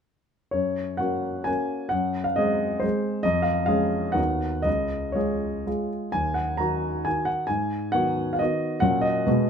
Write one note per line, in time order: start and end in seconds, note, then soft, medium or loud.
0.51 0.99 F#2 soft
0.51 0.99 C#5 medium
0.97 1.43 A#3 soft
0.97 1.43 C#4 soft
0.97 1.44 F#4 soft
0.97 1.46 F#5 medium
1.44 1.88 A#3 soft
1.44 1.88 C#4 soft
1.44 1.88 F#4 soft
1.44 1.91 G#5 medium
1.89 2.37 F#2 soft
1.89 2.25 F#5 medium
2.24 2.37 F5 medium
2.36 2.79 G#3 soft
2.36 2.80 C4 soft
2.36 2.80 G#4 soft
2.36 2.82 D#5 medium
2.80 3.22 G#3 soft
2.80 3.22 C4 soft
2.80 3.22 G#4 soft
2.80 3.24 C5 medium
3.23 3.68 F2 soft
3.23 3.46 D#5 medium
3.42 3.64 F5 medium
3.66 4.12 G#3 soft
3.66 4.12 C#4 soft
3.66 4.13 G#4 medium
3.66 4.15 F5 medium
4.12 4.63 D#2 soft
4.12 4.60 B3 soft
4.12 4.61 D#4 soft
4.12 4.61 F#4 soft
4.12 4.64 F#5 medium
4.62 5.14 C#2 soft
4.62 5.14 D#5 medium
5.12 5.62 G#3 soft
5.12 5.62 F4 soft
5.12 5.62 G#4 soft
5.12 5.88 C#5 soft
5.66 6.09 G#3 soft
5.66 6.09 F4 soft
5.66 6.10 G#4 soft
6.12 6.59 D#2 soft
6.12 6.35 G#5 medium
6.34 6.59 F#5 medium
6.57 7.02 D#3 soft
6.57 7.02 D#4 soft
6.57 7.02 F#4 soft
6.57 7.05 A#5 medium
7.05 7.46 D#3 soft
7.05 7.46 D#4 soft
7.05 7.46 F#4 soft
7.05 7.27 G#5 medium
7.25 7.48 F#5 medium
7.47 7.92 G#2 soft
7.47 7.93 G#5 medium
7.92 8.36 D#3 soft
7.92 8.36 B3 soft
7.92 8.37 F#4 medium
7.92 8.32 F#5 medium
8.33 8.40 F5 medium
8.39 8.78 D#3 soft
8.39 8.79 B3 soft
8.39 8.79 F#4 soft
8.39 8.81 D#5 medium
8.80 9.26 A#2 medium
8.80 9.23 F#3 soft
8.80 9.23 C#4 soft
8.80 9.24 F#4 soft
8.80 9.02 F#5 medium
9.01 9.50 D#5 medium
9.26 9.50 B2 medium
9.26 9.50 G#3 soft
9.26 9.50 B3 soft
9.26 9.50 F#4 soft